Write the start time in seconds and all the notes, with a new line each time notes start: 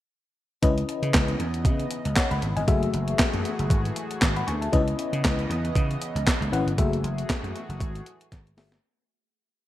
0.62 C#2 C#3 E3 B3 C#4 E4 B4 D#5, kick, closed hi-hat
0.78 closed hi-hat
0.89 closed hi-hat
1.02 C#3, closed hi-hat
1.14 C#2, kick, snare, clap, closed hi-hat
1.28 closed hi-hat
1.39 E2, closed hi-hat
1.54 closed hi-hat
1.65 C#3, kick, closed hi-hat
1.80 closed hi-hat
1.91 closed hi-hat
2.05 C#2, closed hi-hat
2.16 C#5 F#5, kick, snare, clap, closed hi-hat
2.31 C#2 F#5 B5, closed hi-hat
2.42 G#1, closed hi-hat
2.56 G1 D#5 G#5, closed hi-hat
2.67 F#1 E3 A3 F#4 G#4 E5, kick, closed hi-hat
2.83 closed hi-hat
2.94 F#1, closed hi-hat
3.08 closed hi-hat
3.19 muted slap bass stroke, kick, snare, clap, closed hi-hat
3.34 F#2, closed hi-hat
3.45 closed hi-hat
3.59 F#1, closed hi-hat
3.70 G#1, kick, closed hi-hat
3.85 closed hi-hat
3.96 closed hi-hat
4.11 closed hi-hat
4.22 G#1, kick, snare, clap, closed hi-hat
4.36 F#5 B5, closed hi-hat
4.47 D2 G#5 C#6, closed hi-hat
4.61 E5 A5, closed hi-hat
4.72 C#2 C#3 B3 C#4 E4 B4 D#5, kick, closed hi-hat
4.88 closed hi-hat
4.99 closed hi-hat
5.13 C#3, closed hi-hat
5.24 C#2, kick, snare, clap, closed hi-hat
5.39 closed hi-hat
5.50 E2, closed hi-hat
5.65 closed hi-hat
5.75 C#3, kick, closed hi-hat
5.91 closed hi-hat
6.02 closed hi-hat
6.15 C#2, closed hi-hat
6.27 kick, snare, clap, closed hi-hat
6.41 C#2, closed hi-hat
6.52 G#1 C#4 E4 B4 F#5, closed hi-hat
6.66 G1, closed hi-hat
6.78 F#1 A3 F#4 G#4 E5, kick, closed hi-hat
6.93 closed hi-hat
7.03 F#1, closed hi-hat
7.18 closed hi-hat
7.30 muted slap bass stroke, kick, snare, clap, closed hi-hat
7.43 F#2, closed hi-hat
7.56 closed hi-hat
7.69 F#1, closed hi-hat
7.80 G#1, kick, closed hi-hat
7.95 closed hi-hat
8.06 closed hi-hat
8.21 closed hi-hat
8.32 G#1, kick, snare, closed hi-hat
8.47 closed hi-hat
8.57 G1 A3 F#4 G#4 E5, snare, open hi-hat
8.72 snare, closed hi-hat